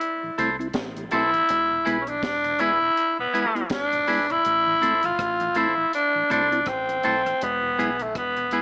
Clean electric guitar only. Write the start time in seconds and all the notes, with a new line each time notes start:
0.38 E4 A4 C5
1.11 E4 A4 C5
1.85 E4 G#4 B4
2.44 muted clean electric guitar stroke
2.59 E4 G#4 B4
3.33 E4 G#4 B4
4.08 E4 G#4 B4
4.81 E4 A4 C5
5.55 E4 A4 C5
6.30 E4 A4 C5
6.51 muted clean electric guitar stroke
7.04 E4 A4 C5
7.26 muted clean electric guitar stroke
7.79 E4 G#4 B4
8.37 muted clean electric guitar stroke
8.53 E4 G#4 B4